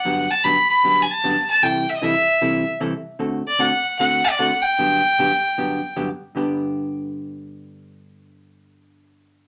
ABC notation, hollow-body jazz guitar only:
X:1
M:4/4
L:1/8
Q:"Swing" 1/4=152
K:G
V:1 name="Hollow-body jazz guitar"
[G,,D,F,B,DG] z [G,,D,F,B,DG] z [G,,D,F,B,DG] z [G,,D,F,B,DG] z | [C,E,G,CEA] z [C,E,G,CEA] z [C,E,G,CEA] z [C,E,G,CEA] z | [D,A,CFA] z [D,A,CFA] z [D,A,CFA] z [D,A,CFA] z | [G,,D,F,B,DG] z [G,,D,F,B,DG] z [G,,D,F,B,DG] z [G,,D,F,B,DG] z |
[G,,D,B,DG]8- | [G,,D,B,DG]8 |]